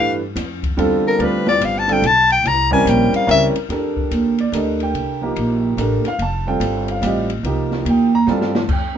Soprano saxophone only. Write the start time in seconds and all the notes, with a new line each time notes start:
Already playing: F5
1.07 A#4
1.24 B4
1.49 D5
1.65 F5
1.79 A5
1.92 G5
2.07 A5
2.32 G5
2.47 A#5
2.73 G#5
2.89 G5
3.16 F5
3.31 E5